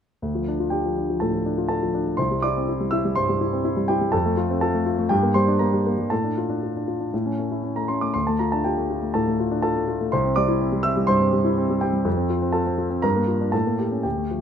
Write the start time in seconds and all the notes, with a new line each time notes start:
0.22 D2
0.35 F3
0.48 D4
0.60 F4
0.70 D4 G4 G5
0.86 F3
0.98 D4
1.10 F3
1.20 A2 A4 A5
1.33 F3
1.46 D4
1.58 F4
1.69 D4 A4 A5
1.83 F3
1.94 D4
2.07 F3
2.17 C2 C5 C6
2.31 G3
2.42 E4 D5 D6
2.57 C4
2.69 E4
2.80 G3
2.91 E4 E5 E6
3.05 G3
3.15 G2 C5 C6
3.29 G3
3.41 E4
3.53 C4
3.65 E4
3.77 G3
3.88 E4 G4 G5
4.01 G3
4.12 F2 A4 A5
4.26 A3
4.37 F4
4.50 C4
4.61 F4 A4 A5
4.74 A3
4.86 F4
4.99 A3
5.09 G2 G4 G5
5.23 A#3
5.34 G3 C5 C6
5.48 D4
5.59 A#3 A#4 A#5
5.73 G3
5.86 A#3
5.98 G3
6.10 A2 A4 A5
6.24 D4
6.38 F4
6.49 D4
6.63 F4
6.77 D4
6.88 F4
7.00 D4
7.14 A2
7.26 C#4
7.39 A3
7.51 E4
7.63 C#4
7.76 A3 A#5
7.88 C#4 C6
8.01 A3 D6
8.14 D2 C6
8.27 A3 A5
8.39 F4 A#5
8.52 D4 A5
8.64 F4 G4 G5
8.77 A3
8.91 F4
9.02 A3
9.14 A2 A4 A5
9.28 A3
9.40 F4
9.51 D4
9.62 F4 A4 A5
9.76 A3
9.88 F4
10.01 A3
10.12 C2 C5 C6
10.25 C4
10.36 G3 D5 D6
10.48 E4
10.61 C4
10.72 G3
10.83 C4 E5 E6
10.97 G3
11.07 G2 C5 C6
11.20 C4
11.33 G3
11.45 E4
11.58 C4
11.70 G3
11.81 C4 G4 G5
11.93 G3
12.05 F2
12.17 C4
12.30 F4
12.42 C4
12.52 F4 A4 A5
12.66 C4
12.78 F4
12.90 C4
13.02 G2 A#4 A#5
13.16 A#3
13.28 F4
13.41 D4
13.52 A2 A4 A5
13.67 A#3
13.78 G4
13.91 C#4
14.03 D2 G4 G5
14.17 A3
14.31 F3